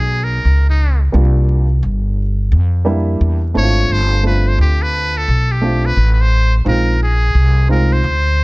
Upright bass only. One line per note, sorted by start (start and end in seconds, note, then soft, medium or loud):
0.00 0.41 B1 medium
0.45 1.10 C#2 medium
1.14 1.79 C2 loud
1.83 2.53 G1 medium
2.52 3.17 F2 loud
3.21 3.53 E2 medium
3.55 3.88 G#1 medium
3.90 4.55 G1 medium
4.59 5.24 D2 loud
5.28 5.93 B1 medium
5.97 6.62 A1 medium
6.66 7.31 A#1 loud
7.35 8.00 C2 medium
8.04 8.44 D2 loud